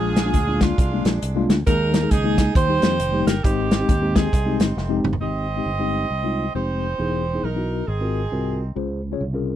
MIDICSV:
0, 0, Header, 1, 5, 480
1, 0, Start_track
1, 0, Key_signature, -4, "major"
1, 0, Tempo, 443459
1, 1807, Time_signature, 4, 2, 24, 8
1, 10347, End_track
2, 0, Start_track
2, 0, Title_t, "Saxophone section"
2, 0, Program_c, 0, 65
2, 0, Note_on_c, 0, 62, 63
2, 0, Note_on_c, 0, 65, 67
2, 0, Note_on_c, 0, 68, 96
2, 657, Note_off_c, 0, 62, 0
2, 660, Note_off_c, 0, 65, 0
2, 666, Note_off_c, 0, 68, 0
2, 669, Note_on_c, 0, 56, 65
2, 670, Note_on_c, 0, 62, 65
2, 673, Note_on_c, 0, 65, 79
2, 1145, Note_off_c, 0, 65, 0
2, 1580, Note_off_c, 0, 56, 0
2, 1581, Note_off_c, 0, 62, 0
2, 1809, Note_on_c, 0, 70, 104
2, 1817, Note_on_c, 0, 63, 68
2, 2254, Note_off_c, 0, 70, 0
2, 2268, Note_off_c, 0, 63, 0
2, 2280, Note_on_c, 0, 68, 91
2, 2281, Note_on_c, 0, 63, 68
2, 2730, Note_off_c, 0, 63, 0
2, 2763, Note_off_c, 0, 68, 0
2, 2771, Note_on_c, 0, 72, 111
2, 2773, Note_on_c, 0, 67, 86
2, 2774, Note_on_c, 0, 63, 83
2, 3496, Note_off_c, 0, 72, 0
2, 3537, Note_on_c, 0, 70, 94
2, 3686, Note_off_c, 0, 63, 0
2, 3686, Note_off_c, 0, 67, 0
2, 3725, Note_off_c, 0, 70, 0
2, 3727, Note_on_c, 0, 67, 88
2, 3728, Note_on_c, 0, 60, 60
2, 3729, Note_on_c, 0, 63, 64
2, 4489, Note_off_c, 0, 60, 0
2, 4495, Note_off_c, 0, 63, 0
2, 4497, Note_off_c, 0, 67, 0
2, 4502, Note_on_c, 0, 60, 60
2, 4505, Note_on_c, 0, 68, 85
2, 4508, Note_on_c, 0, 63, 62
2, 4981, Note_off_c, 0, 68, 0
2, 5417, Note_off_c, 0, 60, 0
2, 5419, Note_off_c, 0, 63, 0
2, 5649, Note_on_c, 0, 72, 68
2, 5650, Note_on_c, 0, 75, 88
2, 5651, Note_on_c, 0, 67, 66
2, 7046, Note_off_c, 0, 67, 0
2, 7046, Note_off_c, 0, 72, 0
2, 7046, Note_off_c, 0, 75, 0
2, 7082, Note_on_c, 0, 63, 58
2, 7085, Note_on_c, 0, 67, 57
2, 7090, Note_on_c, 0, 72, 75
2, 8003, Note_off_c, 0, 63, 0
2, 8004, Note_off_c, 0, 67, 0
2, 8048, Note_on_c, 0, 63, 53
2, 8050, Note_off_c, 0, 72, 0
2, 8051, Note_on_c, 0, 70, 70
2, 8495, Note_off_c, 0, 63, 0
2, 8525, Note_on_c, 0, 60, 50
2, 8526, Note_on_c, 0, 63, 53
2, 8529, Note_on_c, 0, 68, 71
2, 8530, Note_off_c, 0, 70, 0
2, 9301, Note_off_c, 0, 68, 0
2, 9444, Note_off_c, 0, 60, 0
2, 9444, Note_off_c, 0, 63, 0
2, 10347, End_track
3, 0, Start_track
3, 0, Title_t, "Tine electric piano"
3, 0, Program_c, 1, 4
3, 0, Note_on_c, 1, 46, 67
3, 0, Note_on_c, 1, 56, 67
3, 0, Note_on_c, 1, 58, 60
3, 0, Note_on_c, 1, 62, 65
3, 0, Note_on_c, 1, 65, 75
3, 144, Note_off_c, 1, 56, 0
3, 148, Note_off_c, 1, 58, 0
3, 151, Note_off_c, 1, 62, 0
3, 152, Note_off_c, 1, 65, 0
3, 263, Note_on_c, 1, 56, 69
3, 270, Note_on_c, 1, 58, 66
3, 273, Note_on_c, 1, 62, 70
3, 280, Note_on_c, 1, 65, 76
3, 388, Note_off_c, 1, 56, 0
3, 392, Note_off_c, 1, 58, 0
3, 393, Note_off_c, 1, 62, 0
3, 397, Note_off_c, 1, 65, 0
3, 508, Note_on_c, 1, 56, 70
3, 516, Note_on_c, 1, 58, 71
3, 519, Note_on_c, 1, 62, 72
3, 527, Note_on_c, 1, 65, 83
3, 619, Note_off_c, 1, 46, 0
3, 784, Note_off_c, 1, 56, 0
3, 788, Note_off_c, 1, 58, 0
3, 790, Note_off_c, 1, 62, 0
3, 794, Note_off_c, 1, 65, 0
3, 993, Note_on_c, 1, 56, 69
3, 1000, Note_on_c, 1, 58, 68
3, 1003, Note_on_c, 1, 62, 70
3, 1009, Note_on_c, 1, 65, 77
3, 1266, Note_off_c, 1, 56, 0
3, 1270, Note_off_c, 1, 58, 0
3, 1271, Note_off_c, 1, 62, 0
3, 1274, Note_off_c, 1, 65, 0
3, 1467, Note_on_c, 1, 56, 96
3, 1472, Note_on_c, 1, 58, 86
3, 1475, Note_on_c, 1, 62, 92
3, 1481, Note_on_c, 1, 65, 110
3, 1688, Note_off_c, 1, 56, 0
3, 1690, Note_off_c, 1, 58, 0
3, 1692, Note_off_c, 1, 62, 0
3, 1694, Note_off_c, 1, 65, 0
3, 1806, Note_on_c, 1, 56, 74
3, 1806, Note_on_c, 1, 58, 60
3, 1810, Note_on_c, 1, 51, 66
3, 1813, Note_on_c, 1, 63, 68
3, 1820, Note_on_c, 1, 68, 82
3, 2064, Note_off_c, 1, 56, 0
3, 2064, Note_off_c, 1, 58, 0
3, 2067, Note_off_c, 1, 63, 0
3, 2071, Note_off_c, 1, 68, 0
3, 2178, Note_on_c, 1, 56, 73
3, 2186, Note_on_c, 1, 58, 66
3, 2189, Note_on_c, 1, 63, 70
3, 2196, Note_on_c, 1, 68, 88
3, 2305, Note_off_c, 1, 56, 0
3, 2309, Note_off_c, 1, 58, 0
3, 2311, Note_off_c, 1, 63, 0
3, 2314, Note_off_c, 1, 68, 0
3, 2424, Note_on_c, 1, 56, 81
3, 2426, Note_on_c, 1, 58, 69
3, 2436, Note_on_c, 1, 63, 76
3, 2442, Note_on_c, 1, 68, 80
3, 2536, Note_off_c, 1, 51, 0
3, 2702, Note_off_c, 1, 56, 0
3, 2703, Note_off_c, 1, 58, 0
3, 2707, Note_off_c, 1, 63, 0
3, 2711, Note_off_c, 1, 68, 0
3, 2766, Note_on_c, 1, 51, 69
3, 2904, Note_on_c, 1, 55, 71
3, 2909, Note_on_c, 1, 58, 64
3, 2915, Note_on_c, 1, 63, 65
3, 2923, Note_on_c, 1, 67, 91
3, 3181, Note_off_c, 1, 55, 0
3, 3184, Note_off_c, 1, 58, 0
3, 3187, Note_off_c, 1, 63, 0
3, 3191, Note_off_c, 1, 67, 0
3, 3378, Note_on_c, 1, 55, 87
3, 3386, Note_on_c, 1, 58, 72
3, 3391, Note_on_c, 1, 63, 76
3, 3399, Note_on_c, 1, 67, 98
3, 3494, Note_off_c, 1, 51, 0
3, 3603, Note_off_c, 1, 55, 0
3, 3607, Note_off_c, 1, 58, 0
3, 3609, Note_off_c, 1, 63, 0
3, 3613, Note_off_c, 1, 67, 0
3, 3722, Note_on_c, 1, 56, 72
3, 3726, Note_on_c, 1, 60, 58
3, 3729, Note_on_c, 1, 44, 60
3, 3730, Note_on_c, 1, 63, 66
3, 3733, Note_on_c, 1, 67, 74
3, 3981, Note_off_c, 1, 56, 0
3, 3984, Note_off_c, 1, 60, 0
3, 3985, Note_off_c, 1, 63, 0
3, 3987, Note_off_c, 1, 67, 0
3, 4103, Note_on_c, 1, 56, 72
3, 4107, Note_on_c, 1, 60, 73
3, 4114, Note_on_c, 1, 63, 64
3, 4122, Note_on_c, 1, 67, 79
3, 4227, Note_off_c, 1, 56, 0
3, 4229, Note_off_c, 1, 60, 0
3, 4233, Note_off_c, 1, 63, 0
3, 4237, Note_off_c, 1, 67, 0
3, 4348, Note_on_c, 1, 56, 78
3, 4349, Note_on_c, 1, 60, 69
3, 4357, Note_on_c, 1, 63, 70
3, 4361, Note_on_c, 1, 67, 88
3, 4455, Note_off_c, 1, 44, 0
3, 4623, Note_off_c, 1, 56, 0
3, 4624, Note_off_c, 1, 60, 0
3, 4628, Note_off_c, 1, 63, 0
3, 4629, Note_off_c, 1, 67, 0
3, 4824, Note_on_c, 1, 56, 73
3, 4828, Note_on_c, 1, 60, 69
3, 4833, Note_on_c, 1, 63, 62
3, 4838, Note_on_c, 1, 67, 76
3, 5101, Note_off_c, 1, 56, 0
3, 5103, Note_off_c, 1, 60, 0
3, 5106, Note_off_c, 1, 63, 0
3, 5108, Note_off_c, 1, 67, 0
3, 5293, Note_on_c, 1, 56, 94
3, 5296, Note_on_c, 1, 60, 82
3, 5301, Note_on_c, 1, 63, 85
3, 5307, Note_on_c, 1, 67, 99
3, 5520, Note_off_c, 1, 56, 0
3, 5522, Note_off_c, 1, 60, 0
3, 5524, Note_off_c, 1, 63, 0
3, 5527, Note_off_c, 1, 67, 0
3, 5632, Note_on_c, 1, 56, 57
3, 5637, Note_on_c, 1, 60, 56
3, 5643, Note_on_c, 1, 44, 50
3, 5645, Note_on_c, 1, 63, 53
3, 5649, Note_on_c, 1, 67, 64
3, 5897, Note_off_c, 1, 56, 0
3, 5899, Note_off_c, 1, 60, 0
3, 5903, Note_off_c, 1, 63, 0
3, 5905, Note_off_c, 1, 67, 0
3, 6023, Note_on_c, 1, 56, 59
3, 6031, Note_on_c, 1, 60, 55
3, 6034, Note_on_c, 1, 63, 57
3, 6043, Note_on_c, 1, 67, 65
3, 6148, Note_off_c, 1, 56, 0
3, 6152, Note_off_c, 1, 60, 0
3, 6153, Note_off_c, 1, 63, 0
3, 6158, Note_off_c, 1, 67, 0
3, 6268, Note_on_c, 1, 56, 72
3, 6271, Note_on_c, 1, 60, 68
3, 6275, Note_on_c, 1, 63, 70
3, 6282, Note_on_c, 1, 67, 88
3, 6373, Note_off_c, 1, 44, 0
3, 6544, Note_off_c, 1, 56, 0
3, 6545, Note_off_c, 1, 60, 0
3, 6547, Note_off_c, 1, 63, 0
3, 6551, Note_off_c, 1, 67, 0
3, 6747, Note_on_c, 1, 56, 73
3, 6751, Note_on_c, 1, 60, 71
3, 6756, Note_on_c, 1, 63, 67
3, 6763, Note_on_c, 1, 65, 83
3, 6968, Note_off_c, 1, 56, 0
3, 6970, Note_off_c, 1, 60, 0
3, 6972, Note_off_c, 1, 63, 0
3, 6976, Note_off_c, 1, 65, 0
3, 7084, Note_on_c, 1, 56, 53
3, 7089, Note_on_c, 1, 60, 56
3, 7095, Note_on_c, 1, 63, 55
3, 7099, Note_on_c, 1, 67, 60
3, 7411, Note_off_c, 1, 56, 0
3, 7414, Note_off_c, 1, 60, 0
3, 7416, Note_off_c, 1, 63, 0
3, 7419, Note_off_c, 1, 67, 0
3, 7558, Note_on_c, 1, 59, 63
3, 7566, Note_on_c, 1, 63, 52
3, 7569, Note_on_c, 1, 52, 53
3, 7570, Note_on_c, 1, 64, 56
3, 7575, Note_on_c, 1, 68, 72
3, 7821, Note_off_c, 1, 59, 0
3, 7825, Note_off_c, 1, 63, 0
3, 7827, Note_off_c, 1, 64, 0
3, 7829, Note_off_c, 1, 68, 0
3, 7945, Note_on_c, 1, 59, 58
3, 7951, Note_on_c, 1, 63, 54
3, 7957, Note_on_c, 1, 64, 58
3, 7959, Note_on_c, 1, 68, 72
3, 8070, Note_off_c, 1, 59, 0
3, 8073, Note_off_c, 1, 63, 0
3, 8076, Note_off_c, 1, 64, 0
3, 8077, Note_off_c, 1, 68, 0
3, 8181, Note_on_c, 1, 59, 70
3, 8184, Note_on_c, 1, 63, 56
3, 8194, Note_on_c, 1, 64, 62
3, 8196, Note_on_c, 1, 66, 73
3, 8297, Note_off_c, 1, 52, 0
3, 8462, Note_off_c, 1, 59, 0
3, 8463, Note_off_c, 1, 63, 0
3, 8468, Note_off_c, 1, 64, 0
3, 8469, Note_off_c, 1, 66, 0
3, 8523, Note_on_c, 1, 44, 59
3, 8669, Note_on_c, 1, 60, 59
3, 8673, Note_on_c, 1, 65, 64
3, 8680, Note_on_c, 1, 70, 76
3, 8681, Note_on_c, 1, 66, 58
3, 8890, Note_off_c, 1, 60, 0
3, 8892, Note_off_c, 1, 65, 0
3, 8896, Note_off_c, 1, 66, 0
3, 8896, Note_off_c, 1, 70, 0
3, 9005, Note_on_c, 1, 60, 57
3, 9008, Note_on_c, 1, 65, 53
3, 9012, Note_on_c, 1, 66, 59
3, 9016, Note_on_c, 1, 70, 69
3, 9255, Note_off_c, 1, 44, 0
3, 9332, Note_off_c, 1, 60, 0
3, 9334, Note_off_c, 1, 65, 0
3, 9336, Note_off_c, 1, 66, 0
3, 9338, Note_off_c, 1, 70, 0
3, 9477, Note_on_c, 1, 61, 64
3, 9484, Note_on_c, 1, 49, 61
3, 9484, Note_on_c, 1, 65, 72
3, 9490, Note_on_c, 1, 68, 64
3, 9494, Note_on_c, 1, 72, 75
3, 9741, Note_off_c, 1, 61, 0
3, 9745, Note_off_c, 1, 65, 0
3, 9747, Note_off_c, 1, 68, 0
3, 9749, Note_off_c, 1, 72, 0
3, 9867, Note_on_c, 1, 61, 72
3, 9874, Note_on_c, 1, 65, 67
3, 9879, Note_on_c, 1, 68, 63
3, 9882, Note_on_c, 1, 73, 88
3, 9991, Note_off_c, 1, 61, 0
3, 9995, Note_off_c, 1, 65, 0
3, 9997, Note_off_c, 1, 68, 0
3, 9999, Note_off_c, 1, 73, 0
3, 10102, Note_on_c, 1, 61, 80
3, 10109, Note_on_c, 1, 65, 68
3, 10115, Note_on_c, 1, 68, 72
3, 10117, Note_on_c, 1, 70, 82
3, 10215, Note_off_c, 1, 49, 0
3, 10347, Note_off_c, 1, 61, 0
3, 10347, Note_off_c, 1, 65, 0
3, 10347, Note_off_c, 1, 68, 0
3, 10347, Note_off_c, 1, 70, 0
3, 10347, End_track
4, 0, Start_track
4, 0, Title_t, "Fingered electric bass"
4, 0, Program_c, 2, 33
4, 0, Note_on_c, 2, 34, 95
4, 371, Note_off_c, 2, 34, 0
4, 371, Note_on_c, 2, 38, 96
4, 777, Note_off_c, 2, 38, 0
4, 847, Note_on_c, 2, 36, 88
4, 1095, Note_off_c, 2, 36, 0
4, 1138, Note_on_c, 2, 34, 95
4, 1298, Note_off_c, 2, 34, 0
4, 1327, Note_on_c, 2, 36, 93
4, 1574, Note_off_c, 2, 36, 0
4, 1614, Note_on_c, 2, 38, 90
4, 1776, Note_off_c, 2, 38, 0
4, 1808, Note_on_c, 2, 39, 107
4, 2215, Note_off_c, 2, 39, 0
4, 2286, Note_on_c, 2, 37, 93
4, 2694, Note_off_c, 2, 37, 0
4, 2763, Note_on_c, 2, 39, 101
4, 3012, Note_off_c, 2, 39, 0
4, 3060, Note_on_c, 2, 41, 86
4, 3219, Note_off_c, 2, 41, 0
4, 3247, Note_on_c, 2, 29, 85
4, 3494, Note_off_c, 2, 29, 0
4, 3536, Note_on_c, 2, 31, 83
4, 3697, Note_off_c, 2, 31, 0
4, 3728, Note_on_c, 2, 32, 100
4, 4135, Note_off_c, 2, 32, 0
4, 4209, Note_on_c, 2, 39, 109
4, 4615, Note_off_c, 2, 39, 0
4, 4689, Note_on_c, 2, 36, 88
4, 4935, Note_off_c, 2, 36, 0
4, 4977, Note_on_c, 2, 31, 93
4, 5137, Note_off_c, 2, 31, 0
4, 5163, Note_on_c, 2, 29, 94
4, 5412, Note_off_c, 2, 29, 0
4, 5459, Note_on_c, 2, 31, 86
4, 5619, Note_off_c, 2, 31, 0
4, 5649, Note_on_c, 2, 32, 72
4, 6056, Note_off_c, 2, 32, 0
4, 6127, Note_on_c, 2, 31, 80
4, 6535, Note_off_c, 2, 31, 0
4, 6607, Note_on_c, 2, 36, 73
4, 7015, Note_off_c, 2, 36, 0
4, 7091, Note_on_c, 2, 29, 81
4, 7498, Note_off_c, 2, 29, 0
4, 7572, Note_on_c, 2, 28, 73
4, 7979, Note_off_c, 2, 28, 0
4, 8048, Note_on_c, 2, 35, 83
4, 8456, Note_off_c, 2, 35, 0
4, 8528, Note_on_c, 2, 32, 83
4, 8937, Note_off_c, 2, 32, 0
4, 9005, Note_on_c, 2, 36, 72
4, 9415, Note_off_c, 2, 36, 0
4, 9484, Note_on_c, 2, 37, 85
4, 9895, Note_off_c, 2, 37, 0
4, 9966, Note_on_c, 2, 36, 70
4, 10347, Note_off_c, 2, 36, 0
4, 10347, End_track
5, 0, Start_track
5, 0, Title_t, "Drums"
5, 174, Note_on_c, 9, 42, 61
5, 178, Note_on_c, 9, 38, 103
5, 282, Note_off_c, 9, 42, 0
5, 287, Note_off_c, 9, 38, 0
5, 363, Note_on_c, 9, 42, 81
5, 369, Note_on_c, 9, 36, 82
5, 471, Note_off_c, 9, 42, 0
5, 477, Note_off_c, 9, 36, 0
5, 658, Note_on_c, 9, 38, 96
5, 659, Note_on_c, 9, 36, 79
5, 659, Note_on_c, 9, 42, 71
5, 766, Note_off_c, 9, 38, 0
5, 767, Note_off_c, 9, 36, 0
5, 768, Note_off_c, 9, 42, 0
5, 847, Note_on_c, 9, 36, 114
5, 852, Note_on_c, 9, 42, 75
5, 955, Note_off_c, 9, 36, 0
5, 960, Note_off_c, 9, 42, 0
5, 1135, Note_on_c, 9, 42, 80
5, 1146, Note_on_c, 9, 38, 127
5, 1244, Note_off_c, 9, 42, 0
5, 1255, Note_off_c, 9, 38, 0
5, 1325, Note_on_c, 9, 42, 106
5, 1433, Note_off_c, 9, 42, 0
5, 1620, Note_on_c, 9, 42, 63
5, 1622, Note_on_c, 9, 38, 102
5, 1728, Note_off_c, 9, 42, 0
5, 1730, Note_off_c, 9, 38, 0
5, 1806, Note_on_c, 9, 42, 74
5, 1807, Note_on_c, 9, 36, 101
5, 1914, Note_off_c, 9, 42, 0
5, 1915, Note_off_c, 9, 36, 0
5, 2095, Note_on_c, 9, 42, 60
5, 2099, Note_on_c, 9, 38, 108
5, 2203, Note_off_c, 9, 42, 0
5, 2207, Note_off_c, 9, 38, 0
5, 2282, Note_on_c, 9, 42, 75
5, 2287, Note_on_c, 9, 36, 89
5, 2391, Note_off_c, 9, 42, 0
5, 2395, Note_off_c, 9, 36, 0
5, 2575, Note_on_c, 9, 38, 92
5, 2576, Note_on_c, 9, 36, 84
5, 2576, Note_on_c, 9, 42, 68
5, 2683, Note_off_c, 9, 38, 0
5, 2684, Note_off_c, 9, 36, 0
5, 2684, Note_off_c, 9, 42, 0
5, 2764, Note_on_c, 9, 36, 125
5, 2767, Note_on_c, 9, 42, 82
5, 2872, Note_off_c, 9, 36, 0
5, 2875, Note_off_c, 9, 42, 0
5, 3052, Note_on_c, 9, 42, 79
5, 3063, Note_on_c, 9, 38, 127
5, 3161, Note_off_c, 9, 42, 0
5, 3172, Note_off_c, 9, 38, 0
5, 3242, Note_on_c, 9, 42, 102
5, 3351, Note_off_c, 9, 42, 0
5, 3542, Note_on_c, 9, 42, 67
5, 3544, Note_on_c, 9, 38, 104
5, 3651, Note_off_c, 9, 42, 0
5, 3653, Note_off_c, 9, 38, 0
5, 3727, Note_on_c, 9, 36, 108
5, 3730, Note_on_c, 9, 42, 75
5, 3836, Note_off_c, 9, 36, 0
5, 3838, Note_off_c, 9, 42, 0
5, 4017, Note_on_c, 9, 42, 60
5, 4021, Note_on_c, 9, 38, 105
5, 4125, Note_off_c, 9, 42, 0
5, 4129, Note_off_c, 9, 38, 0
5, 4207, Note_on_c, 9, 42, 80
5, 4209, Note_on_c, 9, 36, 101
5, 4316, Note_off_c, 9, 42, 0
5, 4318, Note_off_c, 9, 36, 0
5, 4498, Note_on_c, 9, 36, 81
5, 4499, Note_on_c, 9, 38, 104
5, 4500, Note_on_c, 9, 42, 78
5, 4607, Note_off_c, 9, 36, 0
5, 4607, Note_off_c, 9, 38, 0
5, 4609, Note_off_c, 9, 42, 0
5, 4687, Note_on_c, 9, 36, 117
5, 4693, Note_on_c, 9, 42, 77
5, 4795, Note_off_c, 9, 36, 0
5, 4801, Note_off_c, 9, 42, 0
5, 4976, Note_on_c, 9, 42, 86
5, 4987, Note_on_c, 9, 38, 127
5, 5084, Note_off_c, 9, 42, 0
5, 5095, Note_off_c, 9, 38, 0
5, 5170, Note_on_c, 9, 38, 58
5, 5278, Note_off_c, 9, 38, 0
5, 5460, Note_on_c, 9, 45, 95
5, 5551, Note_on_c, 9, 43, 89
5, 5569, Note_off_c, 9, 45, 0
5, 5659, Note_off_c, 9, 43, 0
5, 10347, End_track
0, 0, End_of_file